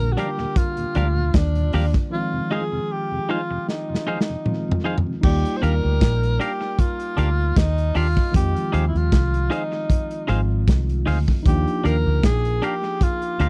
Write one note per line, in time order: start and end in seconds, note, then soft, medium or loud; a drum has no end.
0.00 0.14 A#1 loud
0.00 0.08 D#2 medium
0.00 0.08 A#2 medium
0.00 2.07 D3 medium
0.00 2.08 G3 medium
0.00 2.08 A#3 medium
0.00 2.09 D4 medium
0.00 2.10 F4 medium
0.00 0.14 A#4 loud
0.00 closed hi-hat medium
0.12 0.20 F#4 medium
0.17 0.27 F3 medium
0.17 0.27 G3 medium
0.17 0.27 D4 medium
0.17 0.28 D4 medium
0.17 0.29 G4 medium
0.17 0.59 G4 loud
0.17 0.29 A#4 loud
0.17 0.29 F5 medium
0.17 closed hi-hat medium
0.39 0.47 D#2 medium
0.39 0.47 A#2 medium
0.39 muted clean electric guitar stroke soft
0.56 1.37 F4 medium
0.56 kick loud
0.56 closed hi-hat medium
0.77 0.86 D#2 medium
0.77 0.86 A#2 medium
0.77 closed hi-hat medium
0.95 1.31 D2 medium
0.95 1.05 F3 medium
0.95 1.05 G3 medium
0.95 1.05 D4 medium
0.95 1.06 D4 medium
0.95 1.07 G4 medium
0.95 1.07 A#4 medium
0.95 1.07 F5 medium
0.95 closed hi-hat medium
1.16 1.25 D#2 medium
1.16 1.25 A#2 medium
1.34 1.70 D#2 loud
1.34 1.95 D4 medium
1.34 kick loud
1.34 snare loud
1.34 closed hi-hat loud
1.55 1.64 D#2 medium
1.55 1.64 A#2 medium
1.55 closed hi-hat soft
1.72 1.93 D#2 medium
1.72 1.83 F3 medium
1.72 1.83 G3 medium
1.72 1.83 D4 medium
1.72 1.84 D4 medium
1.72 1.85 G4 loud
1.72 1.85 A#4 medium
1.72 1.85 F5 medium
1.72 open hi-hat medium
1.94 kick medium
1.94 closed hi-hat soft
2.10 4.41 D#3 medium
2.10 4.41 F3 medium
2.10 4.42 G#3 medium
2.10 2.53 F4 medium
2.14 4.43 C4 medium
2.14 4.43 F4 medium
2.33 2.41 F2 medium
2.33 2.41 C3 medium
2.50 2.60 F3 medium
2.50 2.61 G#3 medium
2.50 2.61 D#4 medium
2.50 2.62 D#4 medium
2.50 2.62 G#4 medium
2.50 2.93 G#4 medium
2.50 2.63 C5 medium
2.50 2.63 F5 medium
2.72 2.80 F2 medium
2.72 2.81 C3 medium
2.92 3.32 G4 medium
3.12 3.20 F2 medium
3.12 3.20 C3 medium
3.29 3.39 F3 medium
3.29 3.39 G#3 medium
3.29 3.40 D#4 medium
3.29 3.39 D#4 medium
3.29 3.69 F4 medium
3.29 3.40 G#4 medium
3.29 3.40 C5 medium
3.29 3.41 F5 loud
3.50 3.58 F2 medium
3.50 3.58 C3 medium
3.50 muted clean electric guitar stroke soft
3.69 4.81 D#4 medium
3.69 snare medium
3.90 3.98 F2 medium
3.90 3.97 C3 medium
3.94 snare medium
4.07 4.17 F3 medium
4.07 4.17 G#3 medium
4.07 4.18 D#4 medium
4.07 4.17 D#4 medium
4.07 4.18 G#4 medium
4.07 4.18 C5 medium
4.07 4.18 F5 medium
4.21 snare medium
4.29 4.37 F2 medium
4.29 4.37 C3 medium
4.45 5.23 D#3 medium
4.45 5.23 F3 soft
4.45 5.24 G#3 soft
4.45 5.24 C4 soft
4.45 5.24 F4 medium
4.45 mid tom medium
4.68 4.76 F2 medium
4.68 4.76 C3 medium
4.68 floor tom loud
4.84 4.95 F3 medium
4.84 4.95 G#3 medium
4.84 4.95 D#4 medium
4.84 4.96 G#4 medium
4.84 4.96 C5 loud
4.84 4.96 F5 medium
4.98 floor tom medium
5.07 5.14 F2 medium
5.07 5.14 C3 medium
5.21 5.43 D#2 loud
5.21 8.30 G3 medium
5.21 8.31 A#3 medium
5.21 8.29 D#4 medium
5.21 5.58 G4 loud
5.21 kick loud
5.21 crash loud
5.26 8.32 F4 medium
5.26 8.32 D5 medium
5.45 closed hi-hat medium
5.57 5.64 C5 medium
5.62 5.82 D#2 medium
5.62 5.73 D4 medium
5.62 5.73 G4 medium
5.62 6.42 A#4 loud
5.62 5.74 A#4 medium
5.62 5.74 F5 medium
5.62 closed hi-hat medium
5.85 6.00 D2 medium
6.01 6.37 A#1 loud
6.01 kick loud
6.01 snare loud
6.01 closed hi-hat loud
6.23 closed hi-hat medium
6.40 6.51 D4 medium
6.40 6.51 G4 medium
6.40 6.81 G4 loud
6.40 6.51 A#4 loud
6.40 6.52 F5 loud
6.40 closed hi-hat medium
6.61 muted clean electric guitar stroke medium
6.79 7.59 F4 medium
6.79 kick loud
6.79 closed hi-hat medium
7.00 closed hi-hat medium
7.17 7.53 D2 medium
7.17 7.28 D4 medium
7.17 7.29 G4 medium
7.17 7.29 A#4 loud
7.17 7.29 F5 loud
7.17 closed hi-hat medium
7.56 7.92 D#2 loud
7.56 7.98 D#4 medium
7.56 kick loud
7.56 snare loud
7.56 closed hi-hat loud
7.78 closed hi-hat medium
7.95 8.15 D#2 medium
7.95 8.06 D4 medium
7.95 8.35 F4 loud
7.95 8.07 G4 medium
7.95 8.07 A#4 medium
7.95 8.07 F5 loud
7.95 open hi-hat medium
8.17 kick medium
8.31 8.54 F2 loud
8.31 10.23 D#3 medium
8.31 10.24 F3 medium
8.31 10.25 G#3 medium
8.31 kick loud
8.31 closed hi-hat loud
8.36 10.26 C4 medium
8.36 10.26 F4 medium
8.36 8.84 G4 loud
8.56 closed hi-hat medium
8.72 8.93 D#2 loud
8.72 8.84 D#4 loud
8.72 8.84 G#4 medium
8.72 8.84 C5 medium
8.72 8.85 F5 loud
8.72 closed hi-hat medium
8.88 8.98 E4 medium
8.95 9.11 D#2 medium
8.95 9.55 F4 medium
8.95 closed hi-hat soft
9.12 9.48 C2 loud
9.12 kick loud
9.12 snare loud
9.12 closed hi-hat medium
9.34 closed hi-hat medium
9.50 9.62 D#4 medium
9.50 10.30 D#4 medium
9.50 9.62 G#4 loud
9.50 9.62 C5 loud
9.50 9.63 F5 loud
9.50 closed hi-hat medium
9.72 muted clean electric guitar stroke soft
9.90 kick loud
9.90 closed hi-hat medium
10.11 closed hi-hat medium
10.28 10.65 G#1 loud
10.28 11.45 D#3 medium
10.28 11.44 F3 soft
10.28 11.46 G#3 soft
10.28 11.46 C4 soft
10.28 10.39 D#4 medium
10.28 11.47 F4 medium
10.28 10.40 G#4 loud
10.28 10.40 C5 loud
10.28 10.40 F5 loud
10.28 closed hi-hat medium
10.68 11.03 C2 loud
10.68 kick loud
10.68 snare loud
10.68 closed hi-hat loud
10.89 closed hi-hat medium
11.06 11.26 D2 medium
11.06 11.17 D#4 medium
11.06 11.18 G#4 medium
11.06 11.18 C5 medium
11.06 11.18 F5 loud
11.06 open hi-hat medium
11.28 kick loud
11.43 11.65 D#2 loud
11.43 13.49 F3 medium
11.43 13.49 A#3 medium
11.43 13.49 D#4 medium
11.43 kick loud
11.43 closed hi-hat loud
11.47 13.49 D4 medium
11.47 13.49 F4 medium
11.47 11.88 G4 loud
11.67 closed hi-hat soft
11.84 12.04 D#2 medium
11.84 11.95 D4 medium
11.84 11.95 G4 medium
11.84 11.96 A#4 medium
11.84 12.24 A#4 loud
11.84 11.96 F5 medium
11.84 closed hi-hat medium
12.06 12.24 D2 loud
12.23 12.59 A#1 loud
12.23 12.65 G#4 loud
12.23 kick loud
12.23 snare loud
12.23 closed hi-hat loud
12.45 closed hi-hat medium
12.62 12.73 D4 loud
12.62 12.74 G4 medium
12.62 13.05 G4 loud
12.62 12.74 A#4 medium
12.62 12.74 F5 medium
12.62 closed hi-hat medium
12.84 muted clean electric guitar stroke soft
13.01 13.49 F4 loud
13.01 kick loud
13.01 closed hi-hat medium
13.22 closed hi-hat medium
13.40 13.49 D2 loud
13.40 13.49 D4 medium
13.40 13.49 G4 medium
13.40 13.49 A#4 medium
13.40 13.49 F5 loud
13.40 closed hi-hat medium